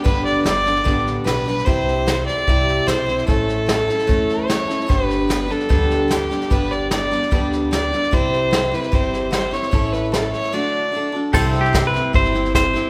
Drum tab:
CC |----------------|----------------|----------------|----------------|
HH |----p-------p---|----p-------p---|----p-------p---|----p-------p---|
SD |o-o-o-ooo-o-o-oo|o-o-o-ooo-o-o-oo|o-o-o-ooo-o-o-oo|o-o-o-ooo-o-o-oo|
BD |o-------o-------|o-------o-------|o-------o-------|o-------o-------|

CC |----------------|----------------|----------------|x---------------|
HH |----p-------p---|----p-------p---|----p-----------|----p-------p---|
SD |o-o-o-ooo-o-o-oo|o-o-o-ooo-o-o-oo|o-o-o-oo--------|o-ooo-o-ooooo-o-|
BD |o-------o-------|o-------o-------|o---------------|o---o---o---o---|